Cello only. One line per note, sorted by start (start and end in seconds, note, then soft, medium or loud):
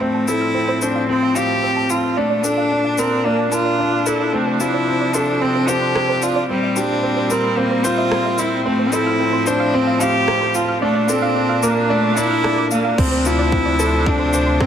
0.00 0.29 A3 medium
0.28 0.84 E4 loud
0.82 1.09 D4 medium
1.09 1.37 C4 loud
1.36 1.92 G4 loud
1.90 2.19 F4 medium
2.17 2.46 A3 medium
2.44 3.00 D4 medium
2.98 3.27 C4 medium
3.25 3.53 A#3 medium
3.52 4.08 F4 loud
4.06 4.34 E4 medium
4.33 4.62 A3 medium
4.60 5.16 E4 medium
5.14 5.43 D4 medium
5.41 5.70 C4 loud
5.68 6.24 G4 medium
6.23 6.49 F4 medium
6.49 6.78 G3 medium
6.76 7.32 D4 medium
7.31 7.59 C4 medium
7.58 7.86 A#3 medium
7.85 8.40 F4 loud
8.39 8.66 E4 medium
8.66 8.94 A3 medium
8.93 9.49 E4 loud
9.47 9.76 D4 loud
9.74 10.03 C4 loud
10.01 10.56 G4 loud
10.55 10.82 F4 medium
10.82 11.11 A3 medium
11.09 11.64 C4 loud
11.63 11.91 A#3 medium
11.90 12.18 A3 medium
12.17 12.71 E4 loud
12.72 13.00 A#3 medium
12.99 13.28 C4 medium
13.26 14.09 E4 loud
14.07 14.63 D4 loud
14.61 14.66 C4 medium